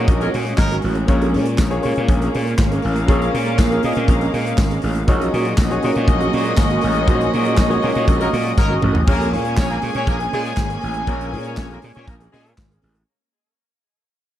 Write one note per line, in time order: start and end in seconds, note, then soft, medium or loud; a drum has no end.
0.00 1.04 F#3 medium
0.00 5.04 G#3 medium
0.00 1.04 A#3 loud
0.00 1.07 A#3 medium
0.00 5.04 C#4 medium
0.00 1.11 D#4 medium
0.00 1.04 F#4 loud
0.00 1.10 F#4 medium
0.00 1.08 G#4 medium
0.00 0.65 A#4 loud
0.00 1.09 C#5 loud
0.00 1.04 D#5 loud
0.08 0.27 A#1 loud
0.08 muted clean electric guitar stroke soft
0.08 kick loud
0.08 closed hi-hat medium
0.20 0.28 F#3 medium
0.20 0.32 C#4 medium
0.20 0.28 D#4 medium
0.20 0.33 F#4 medium
0.20 0.28 A#4 medium
0.20 0.34 A#4 loud
0.20 closed hi-hat soft
0.33 0.53 A#2 loud
0.33 0.46 C#4 medium
0.33 0.46 F#4 medium
0.33 0.45 A#4 medium
0.33 open hi-hat medium
0.46 muted clean electric guitar stroke medium
0.46 closed hi-hat soft
0.58 0.77 G#1 medium
0.58 0.74 F#3 medium
0.58 0.74 D#4 loud
0.58 0.74 A#4 loud
0.58 muted clean electric guitar stroke soft
0.58 kick loud
0.58 snare medium
0.58 clap medium
0.58 tambourine medium
0.71 0.82 C#4 medium
0.71 0.83 F#4 medium
0.71 0.84 A#4 medium
0.71 closed hi-hat medium
0.82 1.03 A1 medium
0.82 0.96 C#4 medium
0.82 0.97 F#4 medium
0.82 0.96 A#4 medium
0.82 open hi-hat medium
0.95 muted clean electric guitar stroke soft
0.95 closed hi-hat soft
1.07 1.36 A#1 loud
1.07 1.58 A#3 medium
1.07 5.05 A#3 medium
1.07 1.59 C#4 medium
1.07 1.59 F4 medium
1.07 1.59 G#4 medium
1.07 1.59 C#5 loud
1.07 muted clean electric guitar stroke soft
1.07 kick loud
1.07 closed hi-hat medium
1.21 1.32 C#4 medium
1.21 1.33 G#4 medium
1.21 1.34 A#4 medium
1.21 closed hi-hat soft
1.33 1.60 A#2 loud
1.33 1.46 C#4 medium
1.33 1.46 G#4 medium
1.33 1.45 A#4 medium
1.33 open hi-hat medium
1.46 muted clean electric guitar stroke medium
1.46 closed hi-hat soft
1.58 1.77 A#1 loud
1.58 muted clean electric guitar stroke medium
1.58 kick loud
1.58 snare loud
1.58 clap loud
1.58 tambourine loud
1.70 1.80 A#3 medium
1.70 1.81 C#4 medium
1.70 1.81 F4 medium
1.70 1.81 G#4 medium
1.70 1.81 C#5 medium
1.70 muted clean electric guitar stroke medium
1.70 closed hi-hat soft
1.82 1.94 A#2 loud
1.82 2.63 A#3 loud
1.82 2.64 C#4 medium
1.82 2.00 C#4 medium
1.82 2.64 F4 medium
1.82 2.64 G#4 medium
1.82 1.97 G#4 medium
1.82 1.96 A#4 medium
1.82 2.64 C#5 loud
1.82 open hi-hat medium
1.96 2.06 A#2 loud
1.96 muted clean electric guitar stroke medium
1.96 closed hi-hat medium
2.08 2.27 A#1 loud
2.08 5.05 C#4 medium
2.08 5.05 A#4 medium
2.08 5.05 F5 medium
2.08 muted clean electric guitar stroke soft
2.08 kick loud
2.08 closed hi-hat medium
2.21 2.33 C#4 medium
2.21 2.33 G#4 loud
2.21 2.35 A#4 loud
2.21 closed hi-hat soft
2.34 2.53 A#2 loud
2.34 2.47 C#4 medium
2.34 2.46 G#4 medium
2.34 2.45 A#4 medium
2.34 open hi-hat medium
2.47 muted clean electric guitar stroke medium
2.47 closed hi-hat soft
2.58 2.77 G#1 medium
2.58 muted clean electric guitar stroke soft
2.58 kick loud
2.58 snare loud
2.58 clap medium
2.58 tambourine medium
2.71 2.83 C#4 medium
2.71 2.83 G#4 medium
2.71 2.84 A#4 loud
2.71 closed hi-hat soft
2.82 3.03 A1 loud
2.82 muted clean electric guitar stroke soft
2.82 open hi-hat medium
2.96 closed hi-hat soft
3.07 3.28 A#1 loud
3.07 3.58 A#3 medium
3.07 3.59 C#4 medium
3.07 3.32 C#4 loud
3.07 3.59 F4 medium
3.07 3.59 G#4 medium
3.07 3.32 G#4 medium
3.07 3.33 A#4 loud
3.07 3.59 C#5 medium
3.07 kick loud
3.07 closed hi-hat medium
3.22 closed hi-hat soft
3.34 3.60 A#2 loud
3.34 muted clean electric guitar stroke soft
3.34 open hi-hat medium
3.45 3.57 C#4 medium
3.45 3.58 G#4 medium
3.45 3.59 A#4 medium
3.45 closed hi-hat soft
3.58 3.78 A#1 loud
3.58 muted clean electric guitar stroke soft
3.58 kick loud
3.58 snare loud
3.58 clap medium
3.58 tambourine medium
3.70 3.81 A#3 medium
3.70 3.81 C#4 medium
3.70 3.81 F4 medium
3.70 3.81 G#4 medium
3.70 3.83 G#4 medium
3.70 3.83 A#4 loud
3.70 3.82 A#4 loud
3.70 closed hi-hat soft
3.83 3.93 A#2 loud
3.83 4.64 A#3 medium
3.83 3.90 C4 medium
3.83 3.96 C#4 medium
3.83 4.65 F4 medium
3.83 3.96 G#4 medium
3.83 4.65 G#4 medium
3.83 3.95 A#4 medium
3.83 4.65 D#5 loud
3.83 open hi-hat medium
3.90 4.67 C#4 medium
3.95 4.06 A#2 loud
3.95 muted clean electric guitar stroke medium
3.95 closed hi-hat medium
4.08 4.27 A#1 loud
4.08 kick loud
4.08 closed hi-hat medium
4.21 4.33 C#4 medium
4.21 4.34 G#4 medium
4.21 4.35 A#4 loud
4.21 closed hi-hat soft
4.34 4.52 A#2 loud
4.34 4.47 C#4 medium
4.34 4.46 G#4 medium
4.34 4.45 A#4 medium
4.34 open hi-hat medium
4.46 muted clean electric guitar stroke soft
4.46 closed hi-hat soft
4.58 4.77 G#1 loud
4.58 muted clean electric guitar stroke soft
4.58 kick loud
4.58 snare loud
4.58 clap medium
4.58 tambourine medium
4.71 4.81 C#4 medium
4.71 4.82 G#4 medium
4.71 4.83 A#4 medium
4.71 closed hi-hat medium
4.82 5.02 A1 medium
4.82 4.96 C#4 medium
4.82 4.95 G#4 medium
4.82 4.94 A#4 medium
4.82 open hi-hat medium
4.95 muted clean electric guitar stroke soft
4.95 closed hi-hat soft
5.07 5.27 A#1 loud
5.07 9.03 F#3 medium
5.07 9.03 G#3 medium
5.07 5.58 A#3 medium
5.07 9.03 A#3 loud
5.07 9.03 C#4 loud
5.07 5.58 D#4 medium
5.07 9.03 F#4 medium
5.07 5.59 F#4 medium
5.07 5.59 G#4 medium
5.07 5.59 C#5 loud
5.07 9.03 D#5 loud
5.07 kick loud
5.07 closed hi-hat medium
5.20 5.32 C#4 medium
5.20 5.33 F#4 medium
5.20 5.33 A#4 medium
5.20 closed hi-hat soft
5.33 5.52 A#2 loud
5.33 5.46 C#4 medium
5.33 5.46 F#4 medium
5.33 5.44 A#4 medium
5.33 open hi-hat medium
5.45 muted clean electric guitar stroke medium
5.45 closed hi-hat medium
5.58 5.77 A#1 loud
5.58 muted clean electric guitar stroke medium
5.58 kick loud
5.58 snare loud
5.58 clap medium
5.58 tambourine medium
5.70 5.80 A#3 medium
5.70 5.81 D#4 medium
5.70 5.81 F#4 medium
5.70 5.81 G#4 medium
5.70 5.81 C#5 loud
5.70 closed hi-hat soft
5.82 5.93 A#2 loud
5.82 6.63 A#3 medium
5.82 6.00 C#4 medium
5.82 6.64 D#4 medium
5.82 6.64 F#4 medium
5.82 5.96 F#4 medium
5.82 6.64 G#4 medium
5.82 5.94 A#4 loud
5.82 6.64 C#5 loud
5.82 open hi-hat medium
5.95 6.09 A#2 loud
5.95 muted clean electric guitar stroke medium
5.95 closed hi-hat medium
6.07 6.27 A#1 loud
6.07 muted clean electric guitar stroke medium
6.07 kick loud
6.07 closed hi-hat medium
6.20 6.31 C#4 medium
6.20 6.31 F#4 medium
6.20 6.32 A#4 medium
6.20 closed hi-hat medium
6.32 6.52 A#2 loud
6.32 6.45 C#4 medium
6.32 6.46 F#4 medium
6.32 6.44 A#4 medium
6.32 open hi-hat medium
6.45 muted clean electric guitar stroke medium
6.45 closed hi-hat soft
6.57 6.77 G#1 medium
6.57 kick loud
6.57 snare loud
6.57 clap medium
6.57 tambourine medium
6.70 6.81 C#4 medium
6.70 6.82 F#4 medium
6.70 6.83 A#4 loud
6.70 closed hi-hat soft
6.81 7.02 A1 loud
6.81 muted clean electric guitar stroke soft
6.81 open hi-hat medium
6.94 muted clean electric guitar stroke medium
6.94 closed hi-hat medium
7.07 7.27 A#1 loud
7.07 7.58 A#3 medium
7.07 7.31 C#4 medium
7.07 7.58 D#4 medium
7.07 7.58 F#4 medium
7.07 7.31 F#4 medium
7.07 7.59 G#4 medium
7.07 7.31 A#4 loud
7.07 7.14 C5 medium
7.07 kick loud
7.07 closed hi-hat medium
7.14 7.62 C#5 medium
7.21 closed hi-hat medium
7.33 7.60 A#2 loud
7.33 muted clean electric guitar stroke soft
7.33 open hi-hat medium
7.45 7.56 C#4 medium
7.45 7.57 F#4 medium
7.45 7.58 A#4 medium
7.45 closed hi-hat soft
7.57 7.77 A#1 loud
7.57 kick loud
7.57 snare loud
7.57 clap medium
7.57 tambourine medium
7.69 7.80 A#3 medium
7.69 7.82 C#4 medium
7.69 7.80 D#4 medium
7.69 7.80 F#4 medium
7.69 7.83 F#4 medium
7.69 7.80 G#4 medium
7.69 7.83 A#4 medium
7.69 7.80 C#5 loud
7.69 closed hi-hat soft
7.82 7.93 A#2 loud
7.82 8.63 A#3 medium
7.82 7.96 C#4 medium
7.82 8.63 D#4 medium
7.82 8.63 F#4 medium
7.82 7.95 F#4 medium
7.82 8.63 G#4 medium
7.82 7.93 A#4 medium
7.82 8.64 C#5 medium
7.82 open hi-hat medium
7.94 8.05 A#2 loud
7.94 muted clean electric guitar stroke medium
7.94 closed hi-hat medium
8.08 8.27 A#1 medium
8.08 muted clean electric guitar stroke soft
8.08 kick loud
8.08 closed hi-hat medium
8.20 8.28 F#3 medium
8.20 8.31 C#4 medium
8.20 8.28 D#4 medium
8.20 8.32 F#4 medium
8.20 8.33 A#4 loud
8.20 8.28 A#4 medium
8.20 closed hi-hat soft
8.32 8.52 A#2 loud
8.32 8.46 C#4 medium
8.32 8.45 F#4 medium
8.32 8.44 A#4 medium
8.32 open hi-hat medium
8.45 muted clean electric guitar stroke soft
8.45 closed hi-hat soft
8.57 8.77 G#1 medium
8.57 8.74 F#3 loud
8.57 8.74 D#4 medium
8.57 8.74 A#4 loud
8.57 muted clean electric guitar stroke soft
8.57 kick loud
8.57 snare medium
8.57 tambourine medium
8.69 8.80 C#4 medium
8.69 8.81 F#4 medium
8.69 8.82 A#4 medium
8.81 9.02 A1 medium
8.81 8.95 C#4 medium
8.81 8.95 F#4 medium
8.81 8.93 A#4 medium
8.81 mid tom loud
8.94 muted clean electric guitar stroke medium
8.94 floor tom loud
9.07 9.35 A#1 loud
9.07 13.04 G#3 medium
9.07 9.27 A#3 medium
9.07 13.04 A#3 medium
9.07 9.28 A#3 loud
9.07 13.04 C#4 medium
9.07 9.28 C#4 medium
9.07 9.28 F4 medium
9.07 12.79 G#4 loud
9.07 9.28 G#4 medium
9.07 9.28 A#4 loud
9.07 9.28 C#5 medium
9.07 12.79 G#5 loud
9.07 muted clean electric guitar stroke soft
9.07 kick loud
9.07 crash loud
9.19 9.31 C#4 medium
9.19 9.32 G#4 medium
9.19 9.32 A#4 medium
9.19 closed hi-hat soft
9.32 9.59 A#2 loud
9.32 10.13 A#3 medium
9.32 9.45 C#4 medium
9.32 10.13 C#4 medium
9.32 10.13 F4 medium
9.32 9.45 G#4 medium
9.32 10.14 G#4 medium
9.32 9.44 A#4 medium
9.32 10.14 C#5 medium
9.32 open hi-hat medium
9.45 9.56 C#4 medium
9.45 9.55 C#5 medium
9.45 muted clean electric guitar stroke soft
9.45 closed hi-hat soft
9.57 9.76 A#1 loud
9.57 9.68 C#4 medium
9.57 9.68 C#5 loud
9.57 muted clean electric guitar stroke soft
9.57 kick loud
9.57 snare loud
9.57 clap medium
9.57 tambourine medium
9.69 9.78 A#3 medium
9.69 9.78 A#4 medium
9.69 muted clean electric guitar stroke soft
9.69 closed hi-hat soft
9.81 9.92 A#2 loud
9.81 9.99 C#4 loud
9.81 9.95 G#4 loud
9.81 9.94 A#4 medium
9.81 open hi-hat medium
9.94 10.04 A#2 medium
9.94 10.05 C#4 medium
9.94 10.05 C#5 loud
9.94 muted clean electric guitar stroke soft
9.94 closed hi-hat medium
10.07 10.26 A#1 medium
10.07 10.15 A#3 medium
10.07 10.15 A#4 medium
10.07 muted clean electric guitar stroke medium
10.07 kick loud
10.07 closed hi-hat medium
10.19 10.31 C#4 medium
10.19 10.32 G#4 medium
10.19 10.32 A#4 medium
10.19 closed hi-hat soft
10.32 10.52 A#2 loud
10.32 10.53 G#3 loud
10.32 10.45 C#4 medium
10.32 10.53 G#4 loud
10.32 10.45 G#4 medium
10.32 10.44 A#4 medium
10.32 open hi-hat medium
10.46 muted clean electric guitar stroke medium
10.46 closed hi-hat soft
10.57 10.76 G#1 medium
10.57 muted clean electric guitar stroke soft
10.57 kick loud
10.57 snare loud
10.57 clap medium
10.57 tambourine medium
10.70 10.81 C#4 medium
10.70 10.81 G#4 medium
10.70 10.82 A#4 loud
10.70 closed hi-hat medium
10.81 11.02 A1 loud
10.81 muted clean electric guitar stroke soft
10.81 open hi-hat medium
10.94 muted clean electric guitar stroke soft
10.94 closed hi-hat soft
11.07 11.35 A#1 loud
11.07 11.28 A#3 medium
11.07 11.28 A#3 loud
11.07 11.30 C#4 medium
11.07 11.28 C#4 medium
11.07 11.28 F4 medium
11.07 11.31 G#4 loud
11.07 11.28 G#4 medium
11.07 11.27 A#4 loud
11.07 11.31 A#4 loud
11.07 11.28 C#5 medium
11.07 kick loud
11.07 closed hi-hat medium
11.21 closed hi-hat soft
11.32 11.59 A#2 loud
11.32 12.13 A#3 medium
11.32 12.13 C#4 medium
11.32 12.14 F4 medium
11.32 12.14 G#4 medium
11.32 12.14 A#4 medium
11.32 muted clean electric guitar stroke soft
11.32 open hi-hat medium
11.44 11.55 C#4 medium
11.44 11.57 C#4 medium
11.44 11.58 G#4 medium
11.44 11.58 A#4 medium
11.44 11.55 C#5 medium
11.44 closed hi-hat soft
11.57 11.77 A#1 loud
11.57 11.68 C#4 medium
11.57 11.68 C#5 medium
11.57 muted clean electric guitar stroke medium
11.57 kick loud
11.57 snare loud
11.57 clap medium
11.57 tambourine loud
11.71 11.78 A#3 medium
11.71 11.81 C#4 medium
11.71 11.83 G#4 medium
11.71 11.78 A#4 medium
11.71 11.83 A#4 medium
11.71 closed hi-hat soft
11.82 11.93 A#2 medium
11.82 11.96 C#4 medium
11.82 11.96 G#4 medium
11.82 11.95 A#4 medium
11.82 open hi-hat medium
11.95 12.05 A#2 loud
11.95 12.05 C#4 medium
11.95 12.05 C#5 loud
11.95 muted clean electric guitar stroke soft
11.95 closed hi-hat soft
12.08 12.27 A#1 loud
12.08 12.15 A#3 medium
12.08 12.15 A#4 medium
12.08 muted clean electric guitar stroke soft
12.08 kick loud
12.08 closed hi-hat medium
12.20 12.32 C#4 medium
12.20 12.33 G#4 medium
12.20 12.34 A#4 medium
12.20 closed hi-hat soft
12.32 12.52 A#2 loud
12.32 12.53 G#3 loud
12.32 12.46 C#4 medium
12.32 12.53 G#4 loud
12.32 12.46 G#4 medium
12.32 12.45 A#4 medium
12.32 open hi-hat medium
12.46 muted clean electric guitar stroke soft
12.46 closed hi-hat soft
12.58 12.77 G#1 medium
12.58 kick loud
12.58 snare loud
12.58 clap medium
12.58 tambourine medium
12.71 12.81 C#4 medium
12.71 12.82 G#4 medium
12.71 12.83 A#4 medium
12.71 closed hi-hat soft
12.82 13.02 A1 medium
12.82 12.96 C#4 medium
12.82 12.96 G#4 medium
12.82 12.95 A#4 medium
12.82 open hi-hat medium
12.95 muted clean electric guitar stroke soft
12.95 closed hi-hat soft